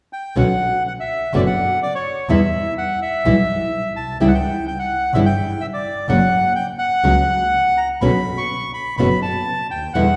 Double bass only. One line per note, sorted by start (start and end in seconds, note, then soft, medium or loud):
0.37 0.58 B1 medium
1.34 1.54 F#1 medium
2.29 2.50 E2 medium
3.25 3.45 B1 medium
3.96 4.19 B1 soft
4.19 4.39 C#2 medium
5.14 5.34 G1 medium
6.09 6.29 F#1 medium
7.04 7.24 C#2 medium
8.02 8.22 B1 medium
8.99 9.19 F#1 medium
9.71 9.94 D2 soft
9.95 10.14 E2 medium